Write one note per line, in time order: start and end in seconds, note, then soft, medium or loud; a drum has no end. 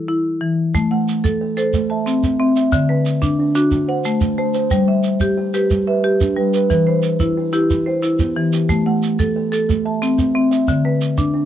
0.08 0.41 E4 medium
0.41 0.74 E3 medium
0.75 1.08 A3 medium
0.75 shekere medium
0.91 1.24 A3 medium
0.91 1.41 F#5 medium
1.08 shekere medium
1.24 1.56 A4 medium
1.24 shekere medium
1.41 1.74 A4 medium
1.57 1.74 A4 medium
1.57 1.90 C5 medium
1.57 shekere medium
1.73 1.90 A3 medium
1.73 shekere medium
1.90 2.39 E5 medium
1.90 2.40 A5 medium
2.06 2.38 C4 medium
2.06 shekere medium
2.23 2.57 C4 medium
2.23 shekere medium
2.40 2.73 C4 medium
2.40 2.55 E5 medium
2.56 2.72 E5 medium
2.56 shekere medium
2.72 3.06 D3 medium
2.72 3.06 E5 medium
2.72 shekere medium
2.89 3.23 D3 medium
2.89 3.39 B4 medium
3.06 shekere medium
3.22 3.54 D4 medium
3.22 shekere medium
3.39 3.72 D4 medium
3.55 3.72 D4 medium
3.55 3.89 F#4 medium
3.55 shekere medium
3.71 3.89 D3 medium
3.71 shekere medium
3.88 4.37 C5 medium
3.88 4.38 F#5 medium
4.05 4.37 A3 medium
4.05 shekere medium
4.21 4.55 A3 medium
4.21 shekere medium
4.38 4.71 A3 medium
4.38 4.53 C5 medium
4.54 4.70 C5 medium
4.54 shekere medium
4.71 5.04 G3 medium
4.71 5.05 C5 medium
4.71 shekere medium
4.88 5.21 G3 medium
4.88 5.38 E5 medium
5.04 shekere medium
5.20 5.53 G4 medium
5.20 shekere medium
5.38 5.71 G4 medium
5.54 5.87 G4 medium
5.54 6.04 B4 medium
5.54 shekere medium
5.71 6.04 G3 medium
5.71 shekere medium
5.87 6.36 B4 medium
5.87 6.37 E5 medium
6.04 6.37 G4 medium
6.21 6.54 D4 medium
6.21 shekere medium
6.36 6.70 G3 medium
6.36 6.53 B4 medium
6.54 6.70 B4 medium
6.54 shekere medium
6.70 7.03 E3 medium
6.70 7.04 B4 medium
6.70 shekere medium
6.87 7.20 E3 medium
6.87 7.36 C5 medium
7.03 shekere medium
7.20 7.52 E4 medium
7.20 shekere medium
7.37 7.70 E4 medium
7.53 7.86 E4 medium
7.53 8.03 G4 medium
7.53 shekere medium
7.70 8.03 E3 medium
7.70 shekere medium
7.86 8.35 G4 medium
7.86 8.36 C5 medium
8.03 8.36 E4 medium
8.03 shekere medium
8.19 8.53 B3 medium
8.19 shekere medium
8.36 8.69 E3 medium
8.36 8.52 G4 medium
8.53 8.68 G4 medium
8.53 shekere medium
8.69 9.02 A3 medium
8.69 9.02 G4 medium
8.69 shekere medium
8.86 9.19 A3 medium
8.86 9.36 F#5 medium
9.03 shekere medium
9.19 9.51 A4 medium
9.19 shekere medium
9.36 9.69 A4 medium
9.52 9.69 A4 medium
9.52 shekere medium
9.69 9.85 A3 medium
9.69 shekere medium
9.85 10.34 E5 medium
9.85 10.35 A5 medium
10.02 10.34 C4 medium
10.02 shekere medium
10.18 10.51 C4 medium
10.18 shekere medium
10.35 10.68 C4 medium
10.35 10.50 E5 medium
10.51 10.85 E5 medium
10.51 shekere medium
10.68 11.01 D3 medium
10.68 shekere medium
10.85 11.18 D3 medium
10.85 11.35 B4 medium
11.01 shekere medium
11.18 11.45 D4 medium
11.18 shekere medium
11.34 11.45 D4 medium